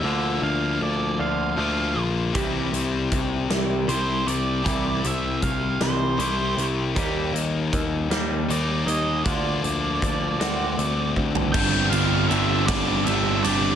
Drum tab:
CC |------------|------------|------------|------------|
RD |------------|------------|------------|------------|
HH |------------|x-x-x-x-x-x-|x-x-x-x-x-x-|x-x-x-x-x-x-|
SD |------------|------o-----|------o-----|------o-----|
FT |------------|------------|------------|------------|
BD |------------|o---o-------|o---o-------|o---o-------|

CC |------------|x-----------|
RD |------------|--x-x-x-x-x-|
HH |x-x-x-x-x---|------------|
SD |------o-----|------o-----|
FT |-----------o|------------|
BD |o---o-----o-|o-----o-----|